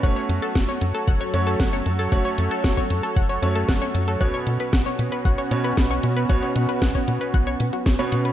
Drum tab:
HH |xxxxxxxxxxxxxxxx|xxxxxxxxxxxxxxxx|xxxxxxxxxxxxxxxx|xxxxxxxxxxxxxxxx|
SD |----o-------o---|----o-------o---|----o-------o---|----o-------o---|
BD |o---o---o---o---|o---oo--o---o---|o---o---o---o---|o---oo--o---o---|